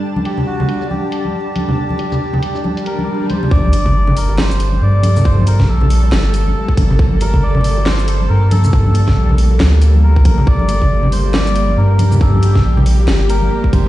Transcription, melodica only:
X:1
M:4/4
L:1/8
Q:"Swing 16ths" 1/4=138
K:Gm
V:1 name="Melodica"
z G ^F2 G4- | G4- G B2 c | d3 B c2 d2 | c B A4- A z |
z B d2 c2 B A- | A3 z3 B B | d3 c d2 B2 | A3 z2 B2 c |]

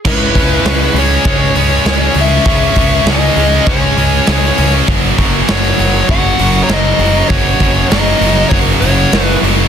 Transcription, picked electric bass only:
X:1
M:4/4
L:1/8
Q:1/4=99
K:C#dor
V:1 name="Picked electric bass" clef=bass
C,, C,, C,, C,, C,, C,, C,, C,, | C,, C,, C,, C,, C,, C,, C,, C,, | F,,, F,,, F,,, F,,, F,,, F,,, F,,, F,,, | F,,, F,,, F,,, F,,, F,,, F,,, F,,, F,,, |]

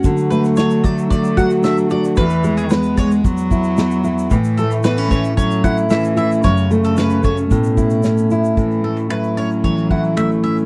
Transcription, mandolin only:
X:1
M:4/4
L:1/16
Q:1/4=113
K:A
V:1 name="Mandolin"
z2 B z c2 d z d2 f z e z d z | B2 z G B2 c z8 z | z2 A z B2 c z c2 f z e z e z | c2 z A B2 c z8 z |
z2 A z B2 c z c2 f z e z e z |]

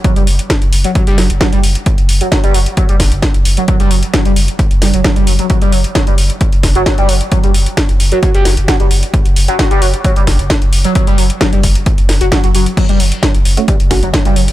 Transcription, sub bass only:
X:1
M:4/4
L:1/16
Q:1/4=132
K:Glyd
V:1 name="Sub bass" clef=bass
z F,,, F,,, z2 F,,, F,,, z2 F,,, F,,, F,,, z F,,, F,,, z | z F,,, F,,, z2 F,,, F,,, z2 F,,, F,,, F,,, z F,,, F,,, z | z F,,, F,,, z2 F,,, F,,, z2 F,,, F,,, F,,, z F,,, F,,, z | z F,,, F,,, z2 F,,, F,,, z2 F,,, F,,, F,,, z F,,, F,,, z |
z F,,, F,,, z2 F,,, F,,, z2 F,,, F,,, F,,, z F,,, F,,, z | z F,,, F,,, z2 F,,, F,,, z2 F,,, F,,, F,,, z F,,, F,,, z | z F,,, F,,, z2 F,,, F,,, z2 F,,, F,,, F,,, z F,,, F,,, z | z F,,, F,,, z2 F,,, F,,, z2 F,,, F,,, F,,, z F,,, F,,, z |]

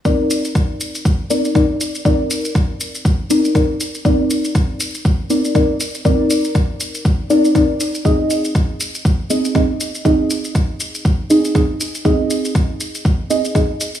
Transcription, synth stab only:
X:1
M:4/4
L:1/8
Q:"Swing 16ths" 1/4=120
K:Cm
V:1 name="Synth stab"
[CEBd]4- [CEBd] [CEBd] [CEBd] z | [CEBd]4- [CEBd] [CEBd] [CEBd] z | [CEBd]4- [CEBd] [CEBd] [CEBd] z | [CEBd]4- [CEBd] [CEBd] [CEBd] z |
[CEAe]4- [CEAe] [CEAe] [CEAe] z | [CEAe]4- [CEAe] [CEAe] [CEAe] z | [CEAe]4- [CEAe] [CEAe] [CEAe] z |]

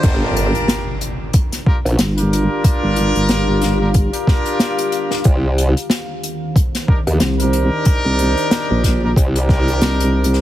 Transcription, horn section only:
X:1
M:4/4
L:1/16
Q:"Swing 16ths" 1/4=92
K:Gphr
V:1 name="Horn section"
[DFGBc]6 z4 [DFGB] z2 [DFGB]3- | [DFGB]6- [DFGB] [DFGB] z [DFGB]6- [DFGB] | z8 z2 [DEGB] z2 [DEGB]3- | [DEGB]6- [DEGB] [DEGB] z [DEGB]6- [DEGB] |]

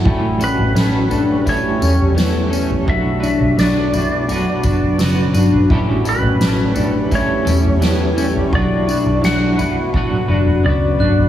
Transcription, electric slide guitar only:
X:1
M:4/4
L:1/8
Q:1/4=85
K:Amix
V:1 name="Electric slide guitar"
z B3 c4 | e2 d4- d z | z B3 c4 | d2 f4 d2 |]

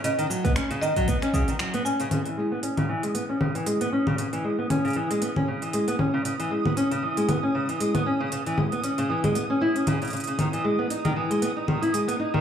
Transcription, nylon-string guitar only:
X:1
M:4/4
L:1/16
Q:"Swing 16ths" 1/4=116
K:C#m
V:1 name="Nylon-string guitar" clef=bass
C, D, F, B, C C, D, F, B, C C, D, F, B, C C, | C, E, G, B, C C, E, G, B, C C, E, G, B, C C, | C, E, G, B, C C, E, G, B, C C, E, G, B, C C, | C, E, G, B, C C, E, G, B, C C, E, G, B, C C, |
C, E, G, B, C C, E, G, B, C E C C, C, C, C, | D, E, G, B, D D, E, G, B, D D, E G, B, D D, |]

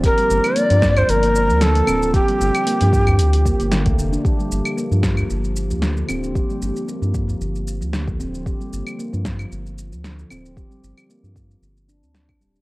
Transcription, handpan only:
X:1
M:4/4
L:1/16
Q:"Swing 16ths" 1/4=114
K:Gm
V:1 name="Handpan" clef=bass
G G, z2 B, F, z4 z F, D, F, C z | G G, z2 B, F, z4 B, B, D, A, D, D | G G, z2 B, F, z4 z F, D, F, C z | G G, z2 B, F, z4 z F, D, F, C z |
G G, z2 B, F, z4 z F, D, F, C z | G G, z2 B, F, z4 D C D D G, D |]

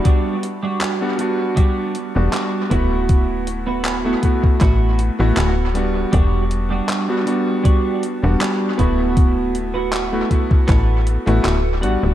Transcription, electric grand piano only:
X:1
M:4/4
L:1/16
Q:"Swing 16ths" 1/4=79
K:Em
V:1 name="Electric grand piano"
[G,B,DF]2 z3 [G,B,DF] [G,B,DF]4- [G,B,DF] [G,B,DF]3 [A,B,EF]2- | [A,B,EF]4- [A,B,EF] [A,B,EF] [A,B,EF]4- [A,B,EF] [A,B,EF]2 z [G,B,DF]2- | [G,B,DF]4- [G,B,DF] [G,B,DF] [G,B,DF]4- [G,B,DF] [G,B,DF]3 [A,B,EF]2- | [A,B,EF]4- [A,B,EF] [A,B,EF] [A,B,EF]4- [A,B,EF] [A,B,EF]2 z [G,B,DF]2 |]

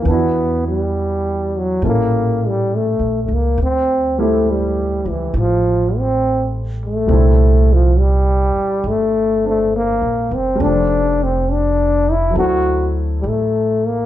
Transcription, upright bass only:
X:1
M:4/4
L:1/8
Q:"Swing" 1/4=68
K:Dm
V:1 name="Upright bass" clef=bass
E,,4 A,,,2- (3A,,, B,,, ^C,, | D,,3 _D,, A,,,4 | C,,3 z G,,,2- (3G,,, B,,, _G,,, | F,,,4 D,,2 A,,,2 |]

